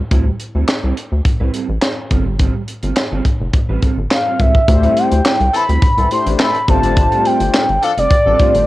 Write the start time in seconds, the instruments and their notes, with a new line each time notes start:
0.11 analog synth bass D2, clean electric guitar G3 C4 E4 A4, kick, closed hi-hat
0.26 muted clean electric guitar stroke
0.40 muted clean electric guitar stroke, closed hi-hat
0.55 analog synth bass D2, clean electric guitar G3 C4 E4 A4
0.68 muted clean electric guitar stroke, snare, clap, closed hi-hat
0.83 analog synth bass C2, clean electric guitar G3 C4 E4 A4
0.97 muted clean electric guitar stroke, closed hi-hat
1.12 analog synth bass D2, muted clean electric guitar stroke
1.25 muted clean electric guitar stroke, kick, closed hi-hat
1.40 analog synth bass C2, clean electric guitar G3 C4 E4 B4
1.53 clean electric guitar G3 C4 E4 A4, closed hi-hat
1.69 analog synth bass A1, muted clean electric guitar stroke
1.82 snare, clap, closed hi-hat
1.97 muted clean electric guitar stroke
2.11 analog synth bass G1, clean electric guitar G3 C4 F4 A4, kick, closed hi-hat
2.26 muted clean electric guitar stroke
2.39 clean electric guitar G3 C4 F4 A4, kick, closed hi-hat
2.54 muted clean electric guitar stroke
2.68 muted clean electric guitar stroke, closed hi-hat
2.83 analog synth bass G1, clean electric guitar G3 C4 F4 A4, closed hi-hat
2.96 snare, clap, closed hi-hat
3.12 analog synth bass G1, clean electric guitar G3 C4 F4 A4
3.25 muted clean electric guitar stroke, kick, closed hi-hat
3.40 analog synth bass F1, muted clean electric guitar stroke
3.53 muted clean electric guitar stroke, kick, closed hi-hat
3.69 analog synth bass A1, clean electric guitar G3 C4 F4 B4
3.82 clean electric guitar G3 C4 F4 A4, kick, closed hi-hat
3.97 analog synth bass G1, muted clean electric guitar stroke
4.11 soft synth lead F5, snare, clap, closed hi-hat
4.26 clean electric guitar G3 C4 F4 A4
4.39 analog synth bass C#2, clean electric guitar G3 C4 F4 A4, soft synth lead E5, kick, closed hi-hat
4.54 muted clean electric guitar stroke, kick
4.68 analog synth bass D2, analog polysynth A3 D4 E4 G4 C5, muted clean electric guitar stroke, kick, closed hi-hat
4.83 clean electric guitar G3 C4 E4 A4, closed hi-hat
4.96 clean electric guitar G3 C4 E4 A4, soft synth lead G5, closed hi-hat
5.12 analog synth bass D2, muted clean electric guitar stroke, closed hi-hat
5.25 clean electric guitar G3 C4 E4 A4, snare, clap
5.40 analog synth bass C2, muted clean electric guitar stroke, closed hi-hat
5.54 horn section E3 C4 A4, soft synth lead B5, muted clean electric guitar stroke, closed hi-hat
5.69 analog synth bass D2, clean electric guitar G3 C4 E4 A4, closed hi-hat
5.82 muted clean electric guitar stroke, kick, closed hi-hat
5.97 analog synth bass C2, horn section E3 C4 A4, muted clean electric guitar stroke, closed hi-hat
6.11 analog polysynth A3 D4 E4 G4 C5, soft synth lead C6, closed hi-hat
6.26 analog synth bass A1, muted clean electric guitar stroke, closed hi-hat
6.39 horn section E3 C4 A4, soft synth lead B5, snare, clap
6.55 muted clean electric guitar stroke, closed hi-hat
6.68 analog synth bass G1, clean electric guitar G3 C4 F4 A4, analog polysynth A3 D4 F4 G4 C5, soft synth lead A5, kick, closed hi-hat
6.83 clean electric guitar G3 C4 F4 A4, closed hi-hat
6.97 muted clean electric guitar stroke, kick, closed hi-hat
7.12 clean electric guitar G3 C4 F4 A4, closed hi-hat
7.25 clean electric guitar G3 C4 F4 A4, soft synth lead G5, closed hi-hat
7.40 analog synth bass G1, muted clean electric guitar stroke, closed hi-hat
7.54 clean electric guitar G3 C4 F4 A4, snare, clap
7.69 analog synth bass G1, muted clean electric guitar stroke, closed hi-hat
7.82 horn section F3 D4 A4, soft synth lead F5, muted clean electric guitar stroke, closed hi-hat
7.97 analog synth bass F1, clean electric guitar G3 C4 F4 A4, soft synth lead D5, closed hi-hat
8.11 muted clean electric guitar stroke, kick, closed hi-hat
8.26 analog synth bass A1, horn section F3 D4 A4, clean electric guitar G3 C4 F4 A4
8.39 clean electric guitar G3 C4 F4 A4, analog polysynth A3 D4 F4 G4 C5, kick, closed hi-hat
8.55 analog synth bass G1, muted clean electric guitar stroke, closed hi-hat